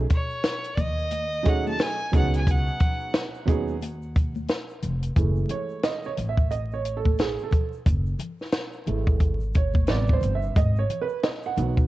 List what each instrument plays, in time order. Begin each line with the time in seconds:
0.10 fiddle C#5, kick, closed hi-hat, shaker
0.30 shaker
0.44 snare, closed hi-hat, shaker
0.64 closed hi-hat, shaker
0.75 upright bass D#2, fiddle D5, kick, closed hi-hat, high conga, low conga, shaker
0.80 fiddle D#5
0.99 shaker
1.11 closed hi-hat, high conga, shaker
1.33 shaker
1.43 grand piano F#3 A3 C#4 D#4 G#4, kick, closed hi-hat, shaker
1.48 fiddle F#5
1.67 fiddle A5, high conga, shaker
1.79 fiddle G#5, snare, closed hi-hat, shaker
2.00 shaker
2.12 upright bass C#2, grand piano F#3 B3 C#4 D#4 G#4, kick, closed hi-hat, low conga, shaker
2.16 fiddle F#5
2.33 fiddle G#5, closed hi-hat, shaker
2.47 fiddle F#5, kick, closed hi-hat, shaker
2.67 shaker
2.80 kick, closed hi-hat, low conga, shaker
3.00 shaker
3.13 snare, closed hi-hat, shaker
3.34 shaker
3.45 upright bass D#2, grand piano F#3 B3 C#4 D#4 G#4, kick, closed hi-hat, high conga, low conga, shaker
3.68 shaker
3.81 closed hi-hat, high conga, shaker
4.02 shaker
4.16 kick, closed hi-hat, shaker
4.36 high conga, shaker
4.48 snare, closed hi-hat, shaker
4.69 shaker
4.82 upright bass F1, closed hi-hat, low conga, shaker
5.03 closed hi-hat, shaker
5.16 upright bass F#1, grand piano E3 G#3 A3, kick, closed hi-hat, shaker
5.36 shaker
5.49 grand piano C#5, closed hi-hat, low conga, shaker
5.69 shaker
5.83 grand piano D#5, snare, closed hi-hat, shaker
6.04 grand piano C#5, shaker
6.17 upright bass A1, closed hi-hat, low conga, shaker
6.29 grand piano E5
6.37 kick, shaker
6.50 grand piano D#5, closed hi-hat, shaker
6.71 grand piano C#5, shaker
6.84 closed hi-hat, shaker
6.97 grand piano A4
7.05 kick, high conga, shaker
7.18 grand piano G#4, snare, closed hi-hat, shaker
7.38 shaker
7.43 grand piano A4
7.51 kick, closed hi-hat, low conga, shaker
7.73 shaker
7.86 upright bass F#1, kick, closed hi-hat, shaker
8.06 shaker
8.19 closed hi-hat, low conga, shaker
8.39 snare, shaker
8.52 snare, closed hi-hat, shaker
8.73 shaker
8.86 upright bass G#1, grand piano E3 G#3 A3, closed hi-hat, low conga, shaker
9.07 kick, shaker
9.20 kick, closed hi-hat, shaker
9.40 shaker
9.53 grand piano C#5, kick, closed hi-hat, shaker
9.74 kick, high conga, shaker
9.87 upright bass A1, grand piano C3 G3 B3 D5, snare, closed hi-hat, shaker
10.07 kick, shaker
10.13 grand piano C5
10.21 upright bass G1, closed hi-hat, low conga, shaker
10.35 grand piano E5
10.42 shaker
10.55 upright bass G#1, grand piano D#5, kick, closed hi-hat, shaker
10.76 grand piano C#5, shaker
10.90 closed hi-hat, low conga, shaker
11.02 grand piano B4
11.09 shaker
11.23 grand piano D#5, snare, closed hi-hat, shaker
11.43 grand piano F#5, shaker
11.57 upright bass B1, grand piano D#3 F#3 B3, closed hi-hat, low conga, shaker
11.77 kick, shaker